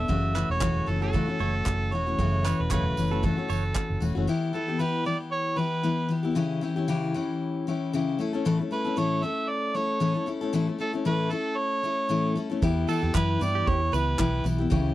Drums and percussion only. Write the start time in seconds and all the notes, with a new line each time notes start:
0.09 kick
0.36 clap
0.61 kick, clap
1.14 kick
1.66 kick, clap
2.19 kick
2.45 clap, tambourine
2.71 kick, clap
2.97 tambourine
3.24 kick
3.50 tambourine
3.75 kick, clap
4.02 tambourine
12.63 kick
12.89 tambourine
13.15 kick, clap
13.41 tambourine
13.67 kick
13.94 tambourine
14.19 kick, clap
14.46 tambourine
14.72 kick